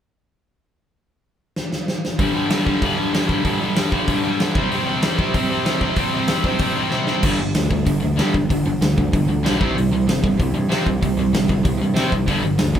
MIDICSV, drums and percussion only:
0, 0, Header, 1, 2, 480
1, 0, Start_track
1, 0, Tempo, 315789
1, 1398, Time_signature, 4, 2, 24, 8
1, 19448, End_track
2, 0, Start_track
2, 0, Title_t, "Drums"
2, 2378, Note_on_c, 9, 38, 67
2, 2530, Note_off_c, 9, 38, 0
2, 2622, Note_on_c, 9, 38, 72
2, 2774, Note_off_c, 9, 38, 0
2, 2862, Note_on_c, 9, 38, 77
2, 3014, Note_off_c, 9, 38, 0
2, 3112, Note_on_c, 9, 38, 83
2, 3264, Note_off_c, 9, 38, 0
2, 3328, Note_on_c, 9, 46, 54
2, 3329, Note_on_c, 9, 36, 106
2, 3480, Note_off_c, 9, 46, 0
2, 3481, Note_off_c, 9, 36, 0
2, 3801, Note_on_c, 9, 46, 52
2, 3810, Note_on_c, 9, 38, 103
2, 3953, Note_off_c, 9, 46, 0
2, 3962, Note_off_c, 9, 38, 0
2, 4051, Note_on_c, 9, 36, 75
2, 4203, Note_off_c, 9, 36, 0
2, 4285, Note_on_c, 9, 46, 53
2, 4287, Note_on_c, 9, 36, 89
2, 4437, Note_off_c, 9, 46, 0
2, 4439, Note_off_c, 9, 36, 0
2, 4774, Note_on_c, 9, 46, 50
2, 4783, Note_on_c, 9, 38, 92
2, 4926, Note_off_c, 9, 46, 0
2, 4935, Note_off_c, 9, 38, 0
2, 5003, Note_on_c, 9, 36, 72
2, 5155, Note_off_c, 9, 36, 0
2, 5240, Note_on_c, 9, 46, 54
2, 5242, Note_on_c, 9, 36, 87
2, 5392, Note_off_c, 9, 46, 0
2, 5394, Note_off_c, 9, 36, 0
2, 5715, Note_on_c, 9, 46, 51
2, 5724, Note_on_c, 9, 38, 107
2, 5867, Note_off_c, 9, 46, 0
2, 5876, Note_off_c, 9, 38, 0
2, 5961, Note_on_c, 9, 36, 79
2, 6113, Note_off_c, 9, 36, 0
2, 6194, Note_on_c, 9, 46, 50
2, 6200, Note_on_c, 9, 36, 92
2, 6346, Note_off_c, 9, 46, 0
2, 6352, Note_off_c, 9, 36, 0
2, 6682, Note_on_c, 9, 46, 48
2, 6691, Note_on_c, 9, 38, 99
2, 6834, Note_off_c, 9, 46, 0
2, 6843, Note_off_c, 9, 38, 0
2, 6920, Note_on_c, 9, 36, 96
2, 7072, Note_off_c, 9, 36, 0
2, 7164, Note_on_c, 9, 46, 52
2, 7316, Note_off_c, 9, 46, 0
2, 7634, Note_on_c, 9, 46, 53
2, 7643, Note_on_c, 9, 38, 105
2, 7786, Note_off_c, 9, 46, 0
2, 7795, Note_off_c, 9, 38, 0
2, 7884, Note_on_c, 9, 36, 80
2, 8036, Note_off_c, 9, 36, 0
2, 8123, Note_on_c, 9, 36, 97
2, 8123, Note_on_c, 9, 46, 56
2, 8275, Note_off_c, 9, 36, 0
2, 8275, Note_off_c, 9, 46, 0
2, 8596, Note_on_c, 9, 46, 50
2, 8605, Note_on_c, 9, 38, 96
2, 8748, Note_off_c, 9, 46, 0
2, 8757, Note_off_c, 9, 38, 0
2, 8832, Note_on_c, 9, 36, 72
2, 8984, Note_off_c, 9, 36, 0
2, 9058, Note_on_c, 9, 46, 58
2, 9069, Note_on_c, 9, 36, 91
2, 9210, Note_off_c, 9, 46, 0
2, 9221, Note_off_c, 9, 36, 0
2, 9537, Note_on_c, 9, 46, 55
2, 9546, Note_on_c, 9, 38, 103
2, 9689, Note_off_c, 9, 46, 0
2, 9698, Note_off_c, 9, 38, 0
2, 9789, Note_on_c, 9, 36, 79
2, 9941, Note_off_c, 9, 36, 0
2, 10010, Note_on_c, 9, 46, 55
2, 10026, Note_on_c, 9, 36, 91
2, 10162, Note_off_c, 9, 46, 0
2, 10178, Note_off_c, 9, 36, 0
2, 10497, Note_on_c, 9, 38, 56
2, 10649, Note_off_c, 9, 38, 0
2, 10747, Note_on_c, 9, 38, 75
2, 10899, Note_off_c, 9, 38, 0
2, 10986, Note_on_c, 9, 49, 106
2, 10992, Note_on_c, 9, 36, 113
2, 11138, Note_off_c, 9, 49, 0
2, 11144, Note_off_c, 9, 36, 0
2, 11466, Note_on_c, 9, 46, 55
2, 11475, Note_on_c, 9, 38, 109
2, 11618, Note_off_c, 9, 46, 0
2, 11627, Note_off_c, 9, 38, 0
2, 11714, Note_on_c, 9, 36, 79
2, 11866, Note_off_c, 9, 36, 0
2, 11948, Note_on_c, 9, 46, 58
2, 11957, Note_on_c, 9, 36, 91
2, 12100, Note_off_c, 9, 46, 0
2, 12109, Note_off_c, 9, 36, 0
2, 12441, Note_on_c, 9, 46, 50
2, 12450, Note_on_c, 9, 38, 98
2, 12593, Note_off_c, 9, 46, 0
2, 12602, Note_off_c, 9, 38, 0
2, 12682, Note_on_c, 9, 36, 75
2, 12834, Note_off_c, 9, 36, 0
2, 12925, Note_on_c, 9, 36, 90
2, 12929, Note_on_c, 9, 46, 56
2, 13077, Note_off_c, 9, 36, 0
2, 13081, Note_off_c, 9, 46, 0
2, 13401, Note_on_c, 9, 46, 56
2, 13410, Note_on_c, 9, 38, 105
2, 13553, Note_off_c, 9, 46, 0
2, 13562, Note_off_c, 9, 38, 0
2, 13647, Note_on_c, 9, 36, 78
2, 13799, Note_off_c, 9, 36, 0
2, 13884, Note_on_c, 9, 36, 92
2, 13891, Note_on_c, 9, 46, 54
2, 14036, Note_off_c, 9, 36, 0
2, 14043, Note_off_c, 9, 46, 0
2, 14373, Note_on_c, 9, 46, 48
2, 14382, Note_on_c, 9, 38, 99
2, 14525, Note_off_c, 9, 46, 0
2, 14534, Note_off_c, 9, 38, 0
2, 14605, Note_on_c, 9, 36, 96
2, 14757, Note_off_c, 9, 36, 0
2, 14862, Note_on_c, 9, 46, 54
2, 15014, Note_off_c, 9, 46, 0
2, 15330, Note_on_c, 9, 46, 51
2, 15339, Note_on_c, 9, 38, 106
2, 15482, Note_off_c, 9, 46, 0
2, 15491, Note_off_c, 9, 38, 0
2, 15560, Note_on_c, 9, 36, 84
2, 15712, Note_off_c, 9, 36, 0
2, 15803, Note_on_c, 9, 36, 89
2, 15815, Note_on_c, 9, 46, 54
2, 15955, Note_off_c, 9, 36, 0
2, 15967, Note_off_c, 9, 46, 0
2, 16284, Note_on_c, 9, 46, 54
2, 16293, Note_on_c, 9, 38, 98
2, 16436, Note_off_c, 9, 46, 0
2, 16445, Note_off_c, 9, 38, 0
2, 16515, Note_on_c, 9, 36, 76
2, 16667, Note_off_c, 9, 36, 0
2, 16760, Note_on_c, 9, 36, 94
2, 16762, Note_on_c, 9, 46, 57
2, 16912, Note_off_c, 9, 36, 0
2, 16914, Note_off_c, 9, 46, 0
2, 17238, Note_on_c, 9, 46, 59
2, 17247, Note_on_c, 9, 38, 107
2, 17390, Note_off_c, 9, 46, 0
2, 17399, Note_off_c, 9, 38, 0
2, 17470, Note_on_c, 9, 36, 78
2, 17622, Note_off_c, 9, 36, 0
2, 17706, Note_on_c, 9, 46, 58
2, 17710, Note_on_c, 9, 36, 94
2, 17858, Note_off_c, 9, 46, 0
2, 17862, Note_off_c, 9, 36, 0
2, 18178, Note_on_c, 9, 46, 47
2, 18187, Note_on_c, 9, 38, 103
2, 18330, Note_off_c, 9, 46, 0
2, 18339, Note_off_c, 9, 38, 0
2, 18426, Note_on_c, 9, 36, 73
2, 18578, Note_off_c, 9, 36, 0
2, 18659, Note_on_c, 9, 46, 52
2, 18663, Note_on_c, 9, 36, 88
2, 18811, Note_off_c, 9, 46, 0
2, 18815, Note_off_c, 9, 36, 0
2, 19126, Note_on_c, 9, 46, 55
2, 19135, Note_on_c, 9, 38, 102
2, 19278, Note_off_c, 9, 46, 0
2, 19287, Note_off_c, 9, 38, 0
2, 19382, Note_on_c, 9, 36, 81
2, 19448, Note_off_c, 9, 36, 0
2, 19448, End_track
0, 0, End_of_file